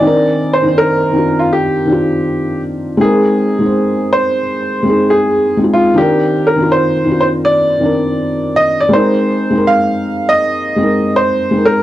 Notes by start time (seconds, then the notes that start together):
Already playing: D5 D#5 G#5
0.00 D#3 C4
0.05 D4 A#4
0.53 C5
0.61 D#3 C4
0.66 D4 C5
0.78 A#4
1.11 D#3 C4
1.16 D4 F4
1.39 F4
1.53 G4
1.85 D#3 C4
1.90 D4 F4
2.97 G#3 C4 G#4
3.02 D#4 A#4
3.59 G#3 C4
3.63 D#4 C5
4.13 C5
4.83 G#3 C4
4.87 D#4 G#4
5.10 G#4
5.57 G#3 C4
5.62 D#4 F4
5.74 F4
5.94 D#3 C4 G4
5.98 D4 A#4
6.47 A#4
6.56 D#3 C4
6.60 D4 F4
6.72 C5
7.04 D#3 C4
7.09 D4 F4
7.21 C5
7.45 D5
7.79 D#3 C4
7.83 D4 A#4
8.56 D#5
8.81 D5
8.89 G#3 C4
8.93 D#4 A#4 C5
9.51 G#3 C4
9.55 D#4 A#4
9.67 F5
10.29 D#5
10.76 G#3 C4
10.80 D#4 A#4
11.16 C5
11.51 G#3 C4
11.55 D#4 A#4
11.65 A#4